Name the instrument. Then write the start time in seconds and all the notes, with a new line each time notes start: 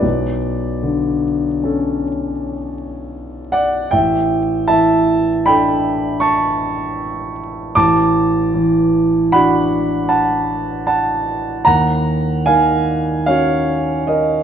grand piano
Already playing: B4 D5
0.02 B1
0.83 D3
1.64 C#4 A4
3.52 D5 F#5
3.91 A1 E5 G5
4.68 E3 E5 A5
5.46 D4 A4 G5 B5
6.20 A5 C#6
7.75 A1 A5 D6
8.54 E3
9.32 D4 F#4 F#5 B5
10.09 F#5 A5
10.87 F#5 A5
11.65 D#2 F#5 A#5
12.46 D#3 F5 G#5
13.26 C#4 F#4 C#5 F5
14.07 A#4 D#5